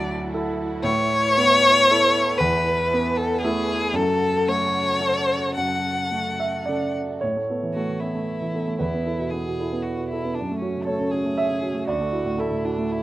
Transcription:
Already playing: D2 F#3 E4 F#4 A4
0.34 E4 A4
0.83 A2 A3 B4 C#5
1.38 B3
1.90 E4 A4
2.38 E2 B4
2.94 B3
3.17 A4
3.42 A3 E4 G#4
3.94 F#2 C#3 F#4 A4
4.48 A3 C#5
5.01 C#4 A4
5.57 F#2 F#5
6.11 A3
6.40 E5
6.66 C#3 A4 D5
7.21 A2 C#5
7.37 A3
7.50 B3 A4
7.63 E3
7.74 A3 F#4
7.90 E3
8.00 B3 E4 A4
8.15 A3
8.42 E3
8.54 B3 A4
8.67 A3
8.79 E2 E4 B4
8.94 B3
9.06 E4 A4
9.19 B2
9.31 B3 G#4
9.46 B2
9.60 E4 A4
9.73 B3
9.82 F#4
9.97 B2
10.09 E4
10.13 A4
10.25 B3
10.35 D4
10.39 F#2
10.51 A3
10.60 C#4 F#4
10.75 C#3
10.84 A4 C#5
10.88 A3
11.00 C#3
11.11 C#4 F#4 G#4
11.25 A3
11.38 E5
11.49 C#3
11.63 C#4 F#4
11.74 A3
11.88 D2 F#4 D5
12.01 A3
12.12 E4 F#4
12.25 A2
12.38 A3 E4 A4
12.51 A2
12.64 D4 E4 F#4
12.78 A3
12.92 E4

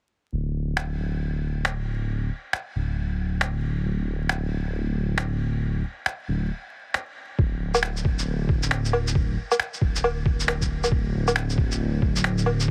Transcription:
0.33 D1
0.77 finger snap
0.98 D1
1.65 finger snap
2.53 finger snap
2.75 D1
3.41 finger snap
3.85 D1
4.29 finger snap
4.52 D1
5.18 finger snap
6.06 finger snap
6.28 D1
6.94 finger snap
7.39 D1, kick
7.75 low woodblock, shaker
7.83 finger snap
7.97 shaker
8.05 D1, kick
8.19 shaker
8.49 kick
8.63 shaker
8.71 finger snap
8.85 shaker
8.93 low woodblock
9.07 shaker
9.15 kick
9.52 low woodblock, shaker
9.60 finger snap
9.73 shaker
9.81 D1, kick
9.96 shaker
10.04 low woodblock
10.26 kick
10.40 shaker
10.48 finger snap, low woodblock
10.62 kick, shaker
10.84 low woodblock, shaker
10.92 D1, kick
11.28 low woodblock, shaker
11.36 finger snap
11.50 shaker
11.58 D1, kick
11.72 shaker
12.02 kick
12.16 shaker
12.24 finger snap
12.38 shaker
12.46 low woodblock
12.60 shaker

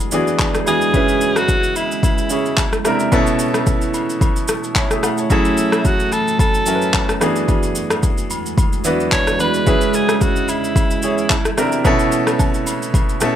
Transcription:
Already playing: E2 D3 E3 G#3 B3 D4 F#4 G#4
0.00 shaker
0.12 E3 B3 D4 F#4 G#4, shaker
0.27 shaker
0.39 kick, clap, high agogo, low woodblock, shaker
0.55 cross-stick, shaker
0.66 E3 B3 D4 F#4 G#4, high agogo, shaker
0.81 shaker
0.94 C#3 G#3 B3 C#4 E4 G#4 B4, kick, high agogo, shaker
1.08 shaker
1.21 shaker
1.36 F#4, cross-stick, high agogo, shaker
1.48 kick, shaker
1.63 shaker
1.76 E4, high agogo, shaker
1.92 shaker
2.03 E4, kick, high agogo, shaker
2.18 shaker
2.30 C#3 C#4 E4 G#4 C#5, shaker
2.46 shaker
2.57 E4, kick, clap, high agogo, low woodblock, shaker
2.73 cross-stick, shaker
2.84 C3 C4 D4 E4 A#4, cross-stick, high agogo, shaker
2.99 shaker
3.12 B2 A3 B3 C#4 E4 A4, kick, high agogo, shaker
3.27 shaker
3.39 shaker
3.54 cross-stick, high agogo, shaker
3.67 kick, shaker
3.81 shaker
3.94 high agogo, shaker
4.10 shaker
4.21 kick, high agogo, shaker
4.36 shaker
4.48 cross-stick, shaker
4.64 shaker
4.76 E4 C#5, kick, clap, high agogo, low woodblock, shaker
4.91 G#4 E5, cross-stick, shaker
5.03 A4 F#5, cross-stick, high agogo, shaker
5.18 C#5 A5, shaker
5.30 F#2 E3 F#3 C#4 E4 F#4 G#4 A4, kick, high agogo, shaker
5.45 shaker
5.57 shaker
5.72 cross-stick, high agogo, shaker
5.85 F#4, kick, shaker
6.00 shaker
6.12 A4, high agogo, shaker
6.28 shaker
6.39 A4, kick, high agogo, shaker
6.54 shaker
6.66 F#3 C#4 E4 A#4 G#5, shaker
6.75 B4
6.82 shaker
6.94 kick, clap, high agogo, low woodblock, shaker
7.09 cross-stick, shaker
7.21 E2 D3 E3 G#3 B3 D4 F#4 G#4, cross-stick, high agogo, shaker
7.36 shaker
7.48 kick, high agogo, shaker
7.63 shaker
7.75 shaker
7.90 cross-stick, high agogo, shaker
8.03 kick, shaker
8.18 shaker
8.30 high agogo, shaker
8.46 shaker
8.58 kick, high agogo, shaker
8.73 shaker
8.84 E3 B3 D4 F#4 B4, shaker
9.00 shaker
9.12 C#5, kick, clap, high agogo, low woodblock, shaker
9.27 cross-stick, shaker
9.39 E3 B3 D4 F#4 B4, high agogo, shaker
9.54 shaker
9.66 C#3 B3 C#4 E4 G#4 B4, kick, high agogo, shaker
9.81 shaker
9.94 G#4, shaker
10.09 cross-stick, high agogo, shaker
10.16 G#4
10.21 F#4, kick, shaker
10.36 shaker
10.48 E4, high agogo, shaker
10.64 shaker
10.76 kick, high agogo, shaker
10.91 shaker
11.02 C#3 C#4 E4 G#4 C#5, shaker
11.18 shaker
11.30 kick, clap, high agogo, low woodblock, shaker
11.45 cross-stick, shaker
11.57 C3 C4 D4 E4 A#4, cross-stick, high agogo, shaker
11.72 shaker
11.84 B2 A3 B3 C#4 E4 A4, kick, high agogo, shaker
11.99 shaker
12.12 shaker
12.27 cross-stick, high agogo, shaker
12.39 kick, low woodblock, shaker
12.54 shaker
12.67 high agogo, shaker
12.82 shaker
12.94 kick, high agogo, shaker
13.09 shaker
13.21 B2 B3 C#4 E4 A4, cross-stick, shaker

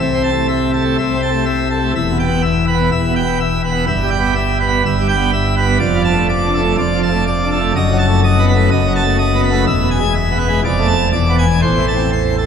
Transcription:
0.00 C2 C3 E5
0.14 C4
0.24 A5
0.32 A3
0.48 E5
0.74 A4
0.82 A3
0.98 C2 C3 E5
1.15 C4
1.23 A5
1.30 A3
1.46 E5
1.70 A4
1.79 A3
1.95 E1 E2 E5
2.11 B2
2.20 G5
2.27 B3
2.43 E5
2.67 B4
2.74 B3
2.92 E1 E2 E5
3.08 B2
3.16 G5
3.25 B3
3.40 E5
3.64 B4
3.71 B3
3.87 G1 G2 E5
4.03 G3
4.10 G5
4.19 B3
4.35 E5
4.60 B4
4.68 B3
4.86 G1 G2 E5
5.01 G3
5.08 G5
5.16 B3
5.33 E5
5.57 B4
5.64 B3
5.79 F1 F2 D5
5.96 F3
6.04 A5
6.12 A3
6.29 D5
6.46 D4
6.54 A4
6.62 A3
6.78 F1 F2 D5
6.95 F3
7.03 A5
7.11 A3
7.27 D5
7.44 D4
7.52 A4
7.60 A3
7.76 F#1 F#2 D#5
7.92 F#3
7.99 A5
8.07 A3
8.24 D#5
8.40 B3
8.48 B4
8.56 A3
8.71 F#1 F#2 D#5
8.88 F#3
8.96 A5
9.03 A3
9.18 D#5
9.36 B3
9.44 B4
9.51 A3
9.67 E1 E2 E5
9.83 B2
9.91 G#5
9.99 G#3
10.15 E5
10.32 B3
10.38 B4
10.48 G#3
10.64 F1 F2 D5
10.79 A3
10.88 A5
11.13 E1 E2 D5
11.30 B3
11.39 G#5
11.62 A1 A2 C5
11.79 E3
11.88 A5
11.96 C4
12.13 C5
12.38 A4

